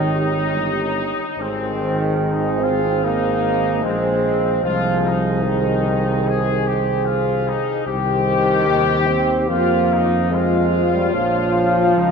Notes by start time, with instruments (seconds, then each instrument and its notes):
Already playing: tuba G#1, trombone D#3, trumpet section D#4, trombone section G4, french horn section C#5
0.55 tuba G1
1.38 tuba G#1, trombone D#3, trumpet section C4, trombone section G#4, french horn section C5
2.22 trumpet section D#4
2.61 trombone C4, trumpet section F4
3.04 trombone A#3, trumpet section D#4
3.83 tuba A#1, trombone G#3, trumpet section C4, trombone section G#4, french horn section C5
4.62 tuba C2, trombone F3, trumpet section F4, trombone section G#4, french horn section C5
5.05 trumpet section D#4
5.43 trombone D#3, trombone section G#4, french horn section C5
6.27 trumpet section G#4
6.67 trumpet section G4
7.05 trumpet section F4
7.48 trumpet section D#4
7.86 tuba C2, trombone D#3, trumpet section G4, trombone section G4, french horn section C5
8.67 tuba D#2
9.08 trombone C4
9.49 tuba F2, trombone A#3, trumpet section F4, trombone section F4, french horn section C5
9.92 trumpet section D#4
10.31 trombone G#3, trombone section F4, trumpet section F4, french horn section C5
10.93 trombone G3
11.13 tuba A#1, trombone F3, trombone section F4, french horn section C#5
11.96 tuba C#2, trumpet section D#4, french horn section C5